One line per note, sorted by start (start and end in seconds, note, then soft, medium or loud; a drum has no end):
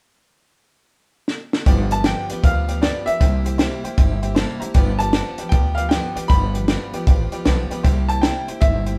1.28 snare medium
1.53 snare medium
1.66 2.11 G1 loud
1.66 1.91 G2 medium
1.66 1.92 D3 loud
1.66 1.92 F3 medium
1.66 1.92 B3 medium
1.66 1.91 F4 loud
1.66 1.90 G4 loud
1.66 1.81 B4 loud
1.66 1.82 D5 loud
1.66 1.81 G5 loud
1.66 kick loud
1.66 closed hi-hat medium
1.91 2.06 B3 medium
1.91 2.06 F4 medium
1.91 2.05 G4 medium
1.91 2.00 B4 medium
1.91 1.99 D5 medium
1.91 2.00 E5 medium
1.91 2.05 A5 loud
1.91 closed hi-hat medium
1.95 2.05 F3 soft
2.04 2.30 G2 medium
2.04 2.30 D3 medium
2.04 2.31 F3 medium
2.04 2.31 B3 medium
2.04 2.30 F4 medium
2.04 2.29 G4 medium
2.04 2.20 B4 medium
2.04 2.20 D5 medium
2.04 2.20 G5 loud
2.04 2.45 G5 loud
2.04 snare loud
2.04 closed hi-hat medium
2.30 2.43 F3 soft
2.30 2.44 B3 medium
2.30 2.44 F4 medium
2.30 2.44 G4 medium
2.30 2.38 B4 medium
2.30 2.38 D5 medium
2.30 2.38 G5 medium
2.30 muted upright bass stroke medium
2.30 closed hi-hat medium
2.43 2.88 D2 medium
2.43 2.69 F3 medium
2.43 2.69 B3 medium
2.43 2.68 F4 medium
2.43 2.58 B4 medium
2.43 2.58 D5 medium
2.43 2.84 F5 loud
2.43 2.58 G5 medium
2.43 kick loud
2.43 closed hi-hat medium
2.47 2.67 G4 medium
2.68 2.82 F3 soft
2.68 2.82 B3 soft
2.68 2.83 F4 soft
2.68 2.82 G4 medium
2.68 2.77 B4 medium
2.68 2.77 D5 medium
2.68 2.77 G5 medium
2.68 closed hi-hat medium
2.81 3.07 G2 medium
2.81 3.08 D3 medium
2.81 3.08 F3 medium
2.81 3.07 B3 medium
2.81 3.06 F4 medium
2.81 3.05 G4 medium
2.81 2.97 B4 loud
2.81 2.97 D5 medium
2.81 3.08 D5 medium
2.81 2.97 G5 loud
2.81 snare loud
2.81 closed hi-hat medium
3.06 3.21 F3 soft
3.06 3.22 B3 soft
3.06 3.21 F4 soft
3.06 3.21 G4 medium
3.06 3.15 B4 medium
3.06 3.15 D5 medium
3.06 4.57 E5 medium
3.06 3.15 G5 medium
3.06 muted upright bass stroke medium
3.06 closed hi-hat medium
3.20 3.65 C2 loud
3.20 3.46 C3 medium
3.20 3.46 G3 medium
3.20 3.46 A#3 medium
3.20 3.45 E4 medium
3.20 3.43 G4 medium
3.20 3.35 C5 medium
3.20 3.36 E5 medium
3.20 3.36 G5 loud
3.20 kick loud
3.20 closed hi-hat medium
3.45 3.59 A#3 soft
3.45 3.59 E4 medium
3.45 3.59 G4 medium
3.45 3.54 C5 medium
3.45 3.54 E5 medium
3.45 3.54 G5 medium
3.45 closed hi-hat medium
3.58 3.84 C3 medium
3.58 3.84 G3 medium
3.58 3.85 A#3 medium
3.58 3.85 E4 medium
3.58 3.83 G4 loud
3.58 3.74 C5 loud
3.58 3.74 E5 loud
3.58 3.74 G5 loud
3.58 snare loud
3.58 closed hi-hat medium
3.84 3.97 A#3 soft
3.84 3.99 E4 medium
3.84 3.98 G4 medium
3.84 3.93 C5 medium
3.84 3.92 E5 medium
3.84 3.93 G5 loud
3.84 muted upright bass stroke medium
3.84 closed hi-hat medium
3.98 4.42 G1 medium
3.98 4.23 G3 medium
3.98 4.23 A#3 medium
3.98 4.24 E4 medium
3.98 4.22 G4 medium
3.98 4.13 C5 medium
3.98 4.13 E5 medium
3.98 4.13 G5 loud
3.98 kick loud
3.98 closed hi-hat medium
4.22 4.37 E4 medium
4.22 4.37 G4 medium
4.22 4.31 C5 medium
4.22 4.31 E5 medium
4.22 4.31 G5 medium
4.22 closed hi-hat medium
4.27 4.37 A#3 soft
4.35 4.62 C3 medium
4.35 4.62 G3 medium
4.35 4.62 A#3 loud
4.35 4.62 E4 loud
4.35 4.51 C5 loud
4.35 4.51 E5 loud
4.35 4.51 A5 loud
4.35 snare loud
4.35 closed hi-hat medium
4.39 4.60 G4 loud
4.60 4.76 E4 medium
4.60 4.75 G4 medium
4.60 4.69 C5 loud
4.60 4.69 E5 medium
4.60 4.69 A#5 loud
4.60 muted upright bass stroke medium
4.60 closed hi-hat medium
4.65 4.77 A#3 medium
4.74 5.19 G1 loud
4.74 5.00 G2 medium
4.74 5.01 D3 loud
4.74 5.01 F3 loud
4.74 5.01 B3 loud
4.74 5.01 F4 loud
4.74 5.00 G4 loud
4.74 4.90 B4 loud
4.74 4.90 D5 loud
4.74 4.90 G5 loud
4.74 kick loud
4.74 closed hi-hat medium
4.99 5.15 F4 soft
4.99 5.14 G4 medium
4.99 5.08 B4 medium
4.99 5.08 D5 medium
4.99 5.09 G5 medium
4.99 5.48 A5 loud
4.99 closed hi-hat medium
5.03 5.15 F3 soft
5.03 5.15 B3 soft
5.13 5.40 G2 medium
5.13 5.40 D3 medium
5.13 5.40 F3 medium
5.13 5.40 B3 medium
5.13 5.28 B4 medium
5.13 5.28 D5 medium
5.13 5.29 G5 loud
5.13 snare loud
5.13 closed hi-hat medium
5.17 5.40 F4 medium
5.17 5.38 G4 medium
5.38 5.53 F4 medium
5.38 5.53 G4 medium
5.38 5.47 B4 medium
5.38 5.47 D5 medium
5.38 5.47 G5 medium
5.38 muted upright bass stroke medium
5.38 closed hi-hat medium
5.42 5.51 F3 soft
5.42 5.52 B3 soft
5.49 5.97 D2 medium
5.49 5.77 F3 medium
5.49 5.67 B4 medium
5.49 5.67 D5 medium
5.49 5.77 G5 medium
5.49 5.67 A5 medium
5.49 kick loud
5.49 closed hi-hat loud
5.53 5.78 B3 medium
5.53 5.78 F4 medium
5.53 5.76 G4 medium
5.75 5.91 G4 medium
5.75 5.85 B4 medium
5.75 5.85 D5 medium
5.75 5.90 F5 medium
5.75 5.85 G5 medium
5.75 closed hi-hat medium
5.79 5.91 F3 soft
5.79 5.91 B3 soft
5.79 5.92 F4 soft
5.89 6.16 G2 medium
5.89 6.16 D3 medium
5.89 6.16 F3 medium
5.89 6.17 B3 medium
5.89 6.17 F4 medium
5.89 6.06 B4 loud
5.89 6.06 D5 medium
5.89 6.26 G5 medium
5.89 6.06 G5 loud
5.89 snare loud
5.89 closed hi-hat medium
5.93 6.15 G4 loud
6.15 6.31 B3 medium
6.15 6.31 F4 soft
6.15 6.30 G4 medium
6.15 6.24 B4 medium
6.15 6.24 D5 medium
6.15 6.24 G5 medium
6.15 muted upright bass stroke medium
6.15 closed hi-hat medium
6.20 6.30 F3 soft
6.28 6.74 G1 medium
6.28 6.55 G2 medium
6.28 6.55 D3 medium
6.28 6.56 F3 medium
6.28 6.56 B3 medium
6.28 6.44 B4 loud
6.28 6.45 D5 medium
6.28 6.45 G5 loud
6.28 7.66 B5 loud
6.28 kick loud
6.28 closed hi-hat medium
6.33 6.56 F4 medium
6.33 6.54 G4 medium
6.54 6.69 B3 medium
6.54 6.69 F4 soft
6.54 6.69 G4 medium
6.54 6.63 B4 medium
6.54 6.63 D5 medium
6.54 6.63 G5 medium
6.54 closed hi-hat medium
6.58 6.69 F3 soft
6.68 6.94 G2 medium
6.68 6.94 D3 medium
6.68 6.94 F3 medium
6.68 6.94 B3 medium
6.68 6.94 F4 medium
6.68 6.92 G4 medium
6.68 6.83 B4 medium
6.68 6.83 D5 medium
6.68 6.83 G5 loud
6.68 snare loud
6.68 closed hi-hat medium
6.93 7.08 B3 medium
6.93 7.08 F4 medium
6.93 7.07 G4 medium
6.93 7.02 B4 medium
6.93 7.02 D5 medium
6.93 7.02 G5 loud
6.93 muted upright bass stroke medium
6.93 closed hi-hat medium
6.97 7.07 F3 medium
7.07 7.28 A1 medium
7.07 7.33 F3 medium
7.07 7.33 B3 medium
7.07 7.32 F4 medium
7.07 7.22 B4 medium
7.07 7.22 D5 medium
7.07 7.30 F5 medium
7.07 7.22 G5 loud
7.07 kick loud
7.07 closed hi-hat medium
7.11 7.32 G4 medium
7.32 7.46 F3 soft
7.32 7.46 B3 medium
7.32 7.46 F4 medium
7.32 7.46 G4 medium
7.32 7.40 B4 medium
7.32 7.40 D5 medium
7.32 7.40 G5 loud
7.32 closed hi-hat medium
7.45 7.67 B1 medium
7.45 7.71 G2 medium
7.45 7.71 D3 medium
7.45 7.71 F3 loud
7.45 7.72 B3 medium
7.45 7.71 F4 medium
7.45 7.69 G4 loud
7.45 7.60 B4 loud
7.45 7.60 D5 loud
7.45 7.60 G5 loud
7.45 7.69 A5 medium
7.45 snare loud
7.45 closed hi-hat medium
7.70 7.84 F3 soft
7.70 7.85 B3 medium
7.70 7.85 F4 medium
7.70 7.84 G4 medium
7.70 7.79 B4 medium
7.70 7.79 D5 medium
7.70 7.79 G5 medium
7.70 7.83 B5 medium
7.70 muted upright bass stroke medium
7.70 closed hi-hat medium
7.83 8.29 C2 medium
7.83 8.09 C3 medium
7.83 8.09 G3 medium
7.83 8.10 A#3 loud
7.83 8.10 E4 medium
7.83 8.08 G4 medium
7.83 7.99 C5 loud
7.83 7.99 E5 loud
7.83 7.99 G5 loud
7.83 kick loud
7.83 closed hi-hat medium
8.09 8.24 E4 soft
8.09 8.23 G4 medium
8.09 8.17 C5 medium
8.09 8.17 E5 medium
8.09 8.17 G5 medium
8.09 8.23 A5 loud
8.09 closed hi-hat medium
8.13 8.24 A#3 soft
8.22 8.48 C3 medium
8.22 8.49 G3 medium
8.22 8.49 A#3 medium
8.22 8.49 E4 medium
8.22 8.48 G4 medium
8.22 8.38 C5 medium
8.22 8.38 E5 medium
8.22 8.62 G5 loud
8.22 8.38 A#5 loud
8.22 snare loud
8.22 closed hi-hat medium
8.48 8.62 A#3 soft
8.48 8.63 E4 medium
8.48 8.62 G4 medium
8.48 8.56 C5 medium
8.48 8.56 E5 medium
8.48 8.56 G5 medium
8.48 muted upright bass stroke medium
8.48 closed hi-hat medium
8.61 8.98 G1 medium
8.61 8.87 G3 medium
8.61 8.87 A#3 medium
8.61 8.88 E4 medium
8.61 8.77 C5 medium
8.61 8.98 E5 loud
8.61 8.77 E5 medium
8.61 8.77 G5 medium
8.61 kick loud
8.61 closed hi-hat medium
8.65 8.86 G4 medium
8.86 8.98 E4 soft
8.86 8.98 G4 medium
8.86 8.95 C5 medium
8.86 8.95 E5 medium
8.86 8.95 G5 medium
8.86 closed hi-hat medium
8.90 8.98 A#3 soft